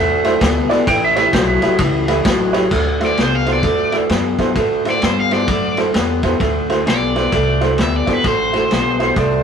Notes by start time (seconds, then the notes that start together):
Already playing: E2 D3 A3 E5
0.24 D3 A3 E4 F#4 A4 C5, snare, ride
0.41 D2 D3 B3, kick, snare, ride
0.69 D3 B3 E4 F#4 A4 D5, muted upright bass stroke, snare, ride
0.87 A1 A2 E3 G5, kick, snare, ride
1.05 E5
1.15 A2 E3 E4 G4 B4 C#5 E5, snare, ride
1.33 B1 A2 F#3 C5, kick, snare, ride
1.48 E5
1.62 A2 F#3 E4 G4 B4 E5, snare, ride
1.78 C#2 A2 E3, kick, snare, ride
2.08 A2 E3 E4 G4 B4 E5, snare, ride
2.25 A1 A2 F#3, kick, snare, ride
2.53 A2 F#3 E4 G4 B4 C#5, snare, ride
2.71 D2 D3 A3, kick, snare, crash
3.00 D3 A3 E4 F#4 A4 C5, snare, ride
3.06 D5
3.17 C2 D3 B3 C5, snare, ride
3.35 F5
3.46 D3 B3 E4 F#4 A4 C5, snare, ride
3.53 D5
3.63 E2 D3 A3, kick, snare, ride
3.92 D3 A3 E4 F#4 A4 D5, snare, ride
4.09 F#2 D3 B3, snare, ride
4.38 D3 B3 E4 F#4 A4 C5, kick, snare, ride
4.56 A2 D3 A3, kick, snare, ride
4.85 D3 A3 E4 F#4 A4 C5, snare, ride
4.90 D5
5.02 G2 D3 B3 C5, snare, ride
5.20 F5
5.31 D3 B3 E4 F#4 A4 C5 D5, snare, ride
5.48 F#2 D3 A3, kick, snare, ride
5.77 D3 A3 E4 F#4 A4 C5, snare, ride
5.94 E2 D3 B3, snare, ride
6.23 D3 B3 E4 F#4 A4 C5, kick, snare, ride
6.40 D2 D3 A3, kick, snare, ride
6.69 D3 A3 E4 F#4 A4 C5, snare, ride
6.86 B1 D3 B3 D5, snare, ride
7.15 D3 B3 E4 F#4 A4 C5, snare, ride
7.32 C2 D3 A3, kick, snare, ride
7.60 D3 A3 E4 F#4 A4 C5, snare, ride
7.78 D2 D3 B3 E5, snare, ride
7.96 D5
8.06 D3 B3 E4 F#4 A4 C5, kick, snare, ride
8.13 B4
8.24 A1 D3 A3 C5, kick, snare, ride
8.52 D3 A3 E4 F#4 A4 C5, snare, ride
8.71 B1 D3 B3, snare, ride
8.99 D3 B3 E4 F#4 A4 C5, snare, ride
9.04 C5
9.16 C2 D3 A3 D5, kick, snare, ride